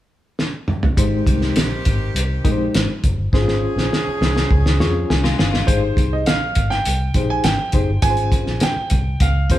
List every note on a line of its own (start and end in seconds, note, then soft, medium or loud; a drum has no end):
0.39 snare medium
0.68 mid tom medium
0.83 floor tom medium
0.96 1.20 G#1 medium
0.96 2.99 D#3 medium
0.96 1.57 G#3 medium
0.96 2.99 C4 medium
0.96 1.57 D#4 medium
0.96 2.99 G4 medium
0.96 1.57 G4 medium
0.96 1.57 C5 medium
0.96 kick loud
0.96 closed hi-hat loud
1.27 1.50 C2 medium
1.27 kick medium
1.27 closed hi-hat medium
1.42 snare soft
1.56 1.79 A#1 medium
1.56 snare medium
1.56 closed hi-hat medium
1.85 2.09 G#1 medium
1.85 kick medium
1.85 closed hi-hat medium
2.15 2.37 C2 medium
2.15 closed hi-hat medium
2.44 2.67 A#1 medium
2.44 2.89 G#3 medium
2.44 2.89 D#4 medium
2.44 2.89 G4 medium
2.44 2.51 A#4 medium
2.44 kick medium
2.44 closed hi-hat medium
2.51 2.93 C5 medium
2.74 2.86 G#1 medium
2.74 snare loud
2.74 closed hi-hat medium
3.04 3.15 F#1 medium
3.04 kick medium
3.04 closed hi-hat medium
3.18 3.29 G1 medium
3.33 3.67 G#1 medium
3.33 5.35 F3 medium
3.33 5.35 C#4 medium
3.33 3.93 C#4 medium
3.33 3.40 E4 medium
3.33 5.35 G#4 medium
3.33 3.93 G#4 medium
3.33 3.93 C5 medium
3.33 kick loud
3.33 snare soft
3.40 3.96 F4 medium
3.48 snare soft
3.76 3.88 A#1 medium
3.76 snare soft
3.93 snare medium
4.07 muted fingered electric bass stroke soft
4.21 4.43 C2 medium
4.21 snare medium
4.37 snare medium
4.51 4.82 C#2 loud
4.51 kick medium
4.66 snare medium
4.80 5.03 F2 medium
4.80 5.25 C#4 medium
4.80 5.25 F4 medium
4.80 5.25 G#4 medium
4.80 5.25 C#5 medium
4.80 snare medium
5.10 5.32 C2 medium
5.10 5.37 G#5 medium
5.10 snare medium
5.24 5.38 G#3 medium
5.24 5.38 F4 medium
5.24 snare medium
5.39 5.62 G1 medium
5.39 5.53 C4 medium
5.39 5.52 G#4 medium
5.39 5.66 F5 medium
5.39 snare medium
5.53 5.81 G#3 medium
5.53 5.81 F4 medium
5.53 snare medium
5.67 5.90 G#1 loud
5.67 6.28 D#4 medium
5.67 6.27 G4 medium
5.67 6.27 G#4 medium
5.67 6.13 C5 medium
5.67 6.28 C5 medium
5.67 kick loud
5.67 closed hi-hat loud
5.97 6.27 C2 medium
5.97 kick medium
5.97 closed hi-hat medium
6.13 6.28 D#5 medium
6.26 6.50 A#1 medium
6.26 6.72 F5 medium
6.26 snare loud
6.26 closed hi-hat medium
6.55 6.79 G#1 medium
6.55 kick medium
6.55 closed hi-hat medium
6.70 7.31 G5 medium
6.70 snare soft
6.86 7.09 C2 medium
6.86 closed hi-hat medium
7.14 7.38 A#1 medium
7.14 7.45 D#4 medium
7.14 7.45 G4 medium
7.14 7.45 G#4 medium
7.14 7.45 C5 medium
7.14 kick medium
7.14 closed hi-hat medium
7.30 7.44 G#5 medium
7.44 7.55 G#1 medium
7.44 8.05 G5 medium
7.44 snare medium
7.44 closed hi-hat medium
7.72 7.85 F#1 medium
7.72 7.89 D#4 medium
7.72 7.89 G4 medium
7.72 7.89 G#4 medium
7.72 7.89 C5 medium
7.72 kick medium
7.72 closed hi-hat medium
7.88 8.00 G1 medium
8.02 8.37 G#1 medium
8.02 8.62 C#4 medium
8.02 8.62 F4 medium
8.02 8.63 G#4 medium
8.02 8.09 B4 medium
8.02 8.63 G#5 loud
8.02 kick loud
8.02 closed hi-hat loud
8.10 8.66 C5 medium
8.17 closed hi-hat soft
8.32 kick medium
8.32 closed hi-hat medium
8.46 8.58 A#1 medium
8.46 snare soft
8.60 9.23 G5 medium
8.60 snare loud
8.60 closed hi-hat medium
8.76 muted fingered electric bass stroke soft
8.90 9.14 C2 medium
8.90 kick medium
8.90 closed hi-hat medium
9.20 9.51 C#2 medium
9.20 9.52 F5 medium
9.20 kick medium
9.20 closed hi-hat medium
9.50 9.59 F2 medium
9.50 9.59 C#4 medium
9.50 9.59 F4 medium
9.50 9.59 G#4 medium
9.50 9.59 C5 medium
9.50 kick medium
9.50 closed hi-hat medium